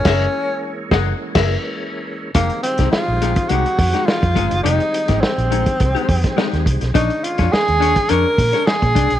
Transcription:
<<
  \new Staff \with { instrumentName = "Hollow-body jazz guitar" } { \time 4/4 \key f \minor \tempo 4 = 104 <aes' bes' fes''>8 r4 <aes' bes' ges''>8 r16 <aes' bes' fes''>8 r4 r16 | <aes ees' g'>16 r8 <aes ees' g'>16 r8 <aes ees' g'>16 r16 <aes ees' g'>16 r8 <aes ees' g'>16 r8 <aes ees' aes'>16 r16 | <aes ees' g'>16 r8 <aes ees' g'>16 r8 <aes ees' aes'>16 r8 <aes ees' g'>16 r8 <aes ees' g'>8 r8 | <d' aes' cis''>16 r8 <d' aes' cis''>16 r8 <d' aes' cis''>16 r16 <d' aes' cis''>16 r8 <d' aes' cis''>16 r8 <d' aes' d''>16 r16 | }
  \new Staff \with { instrumentName = "Tenor saxophone" } { \time 4/4 \key f \minor des'4. r2 r8 | bes8 c'8 f'4 ges'4 f'4 | ees'4 c'2~ c'8 r8 | ees'8 f'8 aes'4 bes'4 aes'4 | }
  \new Staff \with { instrumentName = "Tonewheel organ" } { \clef bass \time 4/4 \key f \minor << { <fes aes des'>1 | <ees g c'>1~ | <ees g c'>1 | <d cis'>1 | } \\ { bes1 | aes1~ | aes1~ | aes1 | } >> }
  \new Staff \with { instrumentName = "Fingered electric bass" } { \clef bass \time 4/4 \key f \minor ges,,8 r4 ges,,8 r16 ges,,8 r4 r16 | f,,16 r8 c,16 r16 bes,,8 r16 c,16 r16 f,16 r8 f,16 g,,16 ges,,16 | f,,16 r8 aes,,16 r16 bes,,8 r16 c,16 r16 f,16 r8 ees,16 c,16 ces,16 | bes,,16 r8 f,16 r16 ees,8 r16 f,16 r16 bes,16 r8 bes,16 c,16 ces,16 | }
  \new DrumStaff \with { instrumentName = "Drums" } \drummode { \time 4/4 <cymc bd sn>4 r8 <bd sn>8 r16 <cymc bd sn>8. r4 | <hh bd>16 hh16 hh16 <hh bd sn>16 sn8 <hh sn>16 <hh bd>16 hh16 hh16 <hho bd>16 <hh sn>16 sn16 <hh bd>16 <hh bd>16 hh16 | hh16 hh16 hh16 <hh bd sn>16 sn16 hh16 hh16 <hh bd>16 <hh bd>16 hh16 <hho bd>16 <hh bd sn>16 sn16 <hh sn>16 <hh bd>16 <hh sn>16 | <hh bd>16 hh16 hh16 <hh bd sn>16 sn16 hh16 <hh sn>16 <hh bd>16 hh8 <hho bd>16 <hh sn>16 sn16 <hh bd>16 <hh bd>16 hh16 | }
>>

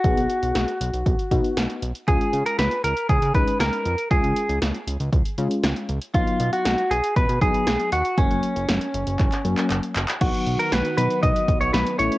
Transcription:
<<
  \new Staff \with { instrumentName = "Clean electric guitar" } { \time 4/4 \key ces \lydian \tempo 4 = 118 ges'2.~ ges'8 r8 | aes'8. bes'16 ces''8 bes'8 aes'8 ces''8 bes'4 | aes'4 r2. | f'8. ges'8. aes'8 ces''8 aes'4 ges'8 |
des'2. r4 | ges'8. bes'16 ces''8 ces''8 ees''8. des''16 ces''8 cis''8 | }
  \new Staff \with { instrumentName = "FM electric piano" } { \time 4/4 \key ces \lydian <ces' ees' aes'>4. r4 <ces' ees' ges'>4 r8 | <aes des' f'>4. r4 <aes des' ees'>4 r8 | <aes des' f'>4. r4 <aes des' f'>4 r8 | <ges ces' ees'>4. r4 <ges ces' ees'>4 r8 |
<ges bes des'>4. r4 <ges bes des'>4 r8 | <ges ces' ees'>4 r8 <ges ces' ees'>4 r8 <ges ces' ees'>8 <a cis' e'>8 | }
  \new Staff \with { instrumentName = "Analog synth pad" } { \time 4/4 \key ces \lydian r1 | r1 | r1 | r1 |
r1 | <ees ces' ges'>2.~ <ees ces' ges'>8 <cis a e'>8 | }
  \new Staff \with { instrumentName = "Analog synth bass" } { \clef bass \time 4/4 \key ces \lydian ces,16 ces,16 r16 ces,16 ces,16 r16 ces,16 ces,16 ces,16 r16 ces16 r16 ces,16 r16 ces,16 r16 | des,16 r16 des16 r16 des,16 r16 des,16 r16 des,16 des16 des,16 r16 des,16 r16 f,16 r16 | des,16 des,16 r16 des,16 des,16 r16 des,16 des,16 des,16 r16 des16 r16 des,16 r16 des,16 r16 | ces,16 r16 ces16 r16 ces,16 r16 ces,16 r16 ces,16 ces16 ces,16 r16 ces,16 r16 ees,16 r16 |
ges,,16 ges,,16 r16 ges,,16 ges,,16 r16 ges,,16 ges,,16 ges,,16 r16 ges,16 r16 ges,,16 r16 ges,,16 r16 | ces,16 r16 ces,16 r16 ces,16 r16 ces16 r16 ces,16 r16 ces,16 ces,16 ces,16 r16 a,,16 r16 | }
  \new DrumStaff \with { instrumentName = "Drums" } \drummode { \time 4/4 <hh bd>16 hh16 hh16 hh16 <hh sn>16 hh16 hh16 hh16 <hh bd>16 hh16 <hh bd>16 hh16 <hh sn>16 hh16 hh16 hh16 | <hh bd>16 hh16 hh16 hh16 <hh sn>16 hh16 hh16 hh16 <hh bd>16 hh16 <hh bd>16 hh16 <hh sn>16 hh16 hh16 hh16 | <hh bd>16 hh16 hh16 hh16 <hh sn>16 hh16 hh16 hh16 <hh bd>16 hh16 hh16 hh16 <hh sn>16 hh16 hh16 hh16 | <hh bd>16 hh16 hh16 hh16 <hh sn>16 hh16 hh16 hh16 <hh bd>16 hh16 <hh bd>16 hh16 <hh sn>16 hh16 hh16 hh16 |
<hh bd>16 hh16 hh16 hh16 <hh sn>16 hh16 hh16 hh16 <hc hh bd>16 <hc hh>16 hh16 <hc hh>16 <hc hh>16 hh16 <hc hh>16 <hc hh>16 | <cymc hh bd>16 hh16 hh16 hh16 <hh sn>16 hh16 hh16 hh16 <hh bd>16 hh16 <hh bd>16 hh16 <hh sn>16 hh16 hh16 hh16 | }
>>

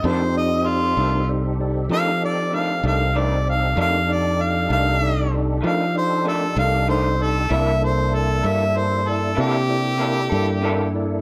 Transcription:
<<
  \new Staff \with { instrumentName = "Harmonica" } { \time 12/8 \key f \major \tempo 4. = 64 c''8 ees''8 f'4 r4 f''8 d''8 f''8 f''8 d''8 f''8 | f''8 d''8 f''8 f''4 r8 f''8 c''8 a'8 f''8 c''8 a'8 | e''8 c''8 a'8 e''8 c''8 a'8 g'2. | }
  \new Staff \with { instrumentName = "Tine electric piano" } { \time 12/8 \key f \major <ees' g' a' d''>8 <ees' g' a' d''>8 <ees' g' a' d''>8 <ees' g' a' d''>8 <ees' g' a' d''>8 <ees' g' a' d''>8 <ees' g' a' d''>8 <ees' g' a' d''>8 <ees' g' a' d''>8 <ees' g' a' d''>8 <ees' g' a' d''>8 <ees' g' a' d''>8 | <ees' g' a' d''>8 <ees' g' a' d''>8 <ees' g' a' d''>8 <ees' g' a' d''>8 <ees' g' a' d''>8 <ees' g' a' d''>8 <ees' g' a' d''>8 <ees' g' a' d''>8 <ees' g' a' d''>8 <ees' g' a' d''>8 <ees' g' a' d''>8 <ees' g' a' d''>8 | <e' a' bes' d''>8 <e' a' bes' d''>8 <e' a' bes' d''>8 <e' a' bes' d''>8 <e' a' bes' d''>8 <e' a' bes' d''>8 <e' a' bes' d''>8 <e' a' bes' d''>8 <e' a' bes' d''>8 <e' a' bes' d''>8 <e' a' bes' d''>8 <e' a' bes' d''>8 | }
  \new Staff \with { instrumentName = "Tonewheel organ" } { \time 12/8 \key f \major <c' ees' g' a'>1. | <d' ees' g' a'>1. | <bes d' e' a'>1. | }
  \new Staff \with { instrumentName = "Clean electric guitar" } { \time 12/8 \key f \major <f, ees a d'>8 r4 <ees a d'>8 r4 <f, ees a d'>8 r8 <f, ees a d'>8 <ees a d'>8 <f, ees a d'>8 r8 | <f, ees a d'>8 r4 <ees a d'>8 r4 <f, ees a d'>8 r8 <f, ees a d'>8 <ees a d'>8 <f, ees a d'>8 r8 | <c bes e' a'>8 r4 <bes e' a'>8 r4 <c bes e' a'>8 r8 <c bes e' a'>8 <bes e' a'>8 <c bes e' a'>8 r8 | }
  \new Staff \with { instrumentName = "Fretless electric bass" } { \clef bass \time 12/8 \key f \major f,4. c,4. f4. c,4. | f,4. c,4. f4. c,4. | c,4. g,4. c4. g,4. | }
>>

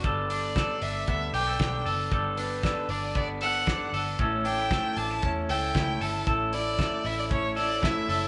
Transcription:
<<
  \new Staff \with { instrumentName = "Violin" } { \time 4/4 \key g \lydian \tempo 4 = 116 r8 d''4 e''8 e''8 g''4 r8 | r8 b'4 d''8 d''8 fis''4 r8 | r8 g''4 a''8 r8 g''4 a''8 | r8 d''4 e''16 d''16 cis''8 d''8 e''4 | }
  \new Staff \with { instrumentName = "Clean electric guitar" } { \time 4/4 \key g \lydian <g a'>8 d'8 a'8 d'8 b8 g'16 a'16 d'8 a'8 | <g a'>8 d'8 a'8 d'8 b8 a'8 d'8 a'8 | <cis' a'>8 d'16 e'16 a'8 d'16 e'16 cis'8 a'8 e'8 a'8 | a'8 e'8 a'8 e'8 cis'8 a'8 e'8 a'8 | }
  \new Staff \with { instrumentName = "Clean electric guitar" } { \time 4/4 \key g \lydian <g b d' a'>8 <b d' a'>8 <g b d' a'>8 <b d' a'>8 <g b d' a'>8 <b d' a'>8 <g b d' a'>8 <b d' a'>8 | <g b d' a'>8 <b d' a'>8 <g b d' a'>8 <b d' a'>8 <g b d' a'>8 <b d' a'>8 <g b d' a'>8 <b d' a'>8 | <a, a cis' e' a'>8 <cis' e' a'>8 <a, a cis' e' a'>8 <cis' e' a'>8 <a cis' e' a'>8 <cis' e' a'>8 <a, a cis' e' a'>8 <cis' e' a'>8 | <a, a cis' e' a'>8 <cis' e' a'>8 <a, a cis' e' a'>8 <cis' e' a'>8 <a cis' e' a'>8 <cis' e' a'>8 <a, a cis' e' a'>8 <cis' e' a'>8 | }
  \new Staff \with { instrumentName = "Picked electric bass" } { \clef bass \time 4/4 \key g \lydian g,,4~ g,,16 r16 g,,8 d,8 b,,8 b,,8 fis,,8 | g,,4~ g,,16 r16 g,,2 g,,8 | a,,4~ a,,16 r16 a,,8 e,8 cis,8 cis,8 g,,8 | a,,4~ a,,16 r16 a,,2 fis,,8 | }
  \new DrumStaff \with { instrumentName = "Drums" } \drummode { \time 4/4 <hh bd>8 hho8 <hh bd sn>8 hho8 <hh bd>8 hho8 <hh bd sn>8 hho8 | <hh bd>8 hho8 <hh bd sn>8 hho8 <hh bd>8 hho8 <hh bd sn>8 hho8 | <hh bd>8 hho8 <hh bd sn>8 hho8 <hh bd>8 hho8 <hh bd sn>8 hho8 | <hh bd>8 hho8 <hh bd sn>8 hho8 <hh bd>8 hho8 <hh bd sn>8 hho8 | }
>>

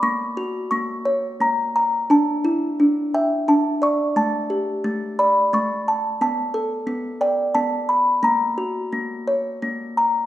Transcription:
\new Staff \with { instrumentName = "Music box" } { \time 3/4 \key fis \phrygian \tempo 4 = 87 << { cis'''4 cis'''4 ais''8. r16 | a''4. g''8 a''8 cis'''8 | a''4. b''8 cis'''8. r16 | a''4 r8 g''8 a''8 r8 |
ais''2~ ais''8 r8 | } \\ { ais8 fis'8 ais8 cis''8 ais8 ais''8 | d'8 e'8 d'8 e''8 d'8 d''8 | a8 g'8 a8 d''8 a8 a''8 | b8 a'8 b8 d''8 b8 b''8 |
ais8 fis'8 ais8 cis''8 ais8 ais''8 | } >> }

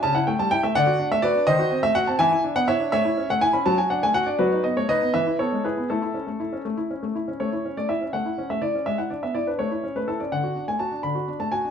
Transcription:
\new Staff \with { instrumentName = "Grand piano" } { \time 6/8 \key a \major \tempo 4. = 82 << { a''16 fis''16 g''16 a''16 g''16 e''16 <d'' fis''>8. e''16 <b' d''>8 | <bis' dis''>8. e''16 fis''16 a''16 <e'' gis''>8. fis''16 <cis'' e''>8 | <cis'' e''>8. fis''16 gis''16 b''16 a''16 gis''16 fis''16 gis''16 fis''16 d''16 | <fis' b'>8 dis''16 cis''16 <b' dis''>8 <b' e''>8 <a' cis''>8 <gis' b'>8 |
<e' a'>4. r4. | cis''8. d''16 e''8 fis''8. e''16 d''8 | e''16 fis''16 d''16 e''16 d''16 b'16 cis''8. b'16 a'16 d''16 | fis''8. gis''16 a''8 b''8. a''16 gis''8 | } \\ { cis16 e'16 a16 g16 e'16 a16 d16 fis'16 d'16 a16 fis'16 d'16 | dis16 fis'16 bis16 a16 fis'16 bis16 e16 e'16 d'16 b16 e'16 d'16 | a16 e'16 cis'16 a16 e'16 cis'16 fis16 fis'16 d'16 a16 fis'16 d'16 | fis16 dis'16 b16 a16 dis'16 b16 e16 e'16 b16 gis16 e'16 b16 |
a16 e'16 cis'16 a16 e'16 cis'16 a16 e'16 cis'16 a16 e'16 cis'16 | a16 e'16 cis'16 a16 e'16 cis'16 a16 e'16 cis'16 a16 e'16 cis'16 | gis16 e'16 d'16 b16 e'16 d'16 a16 e'16 cis'16 a16 e'16 cis'16 | d16 fis'16 d'16 a16 fis'16 d'16 d16 fis'16 d'16 a16 fis'16 d'16 | } >> }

